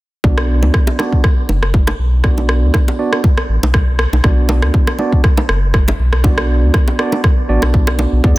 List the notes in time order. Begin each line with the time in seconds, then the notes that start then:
0.24 B1 B3 D4 F#4 D5, kick
0.38 cross-stick
0.62 D2, low bongo
0.74 kick, cross-stick
0.87 high bongo
0.99 B3 D4 F#4 D5, cross-stick, low bongo
1.13 kick
1.24 kick, cross-stick
1.49 F#1, low bongo
1.63 cross-stick
1.74 kick
1.87 cross-stick, high bongo, low bongo
1.99 B1
2.24 B3 D4 F#4 D5, kick, cross-stick
2.38 low bongo
2.49 cross-stick
2.62 D2
2.74 kick, cross-stick, low bongo
2.88 high bongo
2.99 B3 D4 F#4 D5
3.13 cross-stick
3.24 kick, low bongo
3.38 cross-stick
3.49 A1
3.62 B1, low bongo
3.74 kick, cross-stick
3.99 cross-stick
4.13 B1, low bongo
4.24 B1 B3 D4 F#4 D5, kick, cross-stick
4.49 low bongo
4.62 D2, cross-stick
4.74 kick
4.87 cross-stick, high bongo
4.99 B3 D4 F#4 D5, low bongo
5.13 kick
5.24 kick, cross-stick
5.37 low bongo
5.49 F#1, cross-stick
5.74 kick, cross-stick
5.88 high bongo, low bongo
5.99 B1
6.13 cross-stick
6.24 B3 D4 F#4 D5, kick, low bongo
6.38 cross-stick
6.63 D2
6.74 kick, cross-stick, low bongo
6.88 high bongo
6.99 B3 D4 F#4 D5, cross-stick
7.12 low bongo
7.24 kick, cross-stick
7.49 A1 B3 D4 F#4 D5
7.62 B1, cross-stick, low bongo
7.74 kick
7.87 cross-stick, high bongo
7.99 low bongo
8.13 B1
8.24 E2 B3 E4 G#4 D5, kick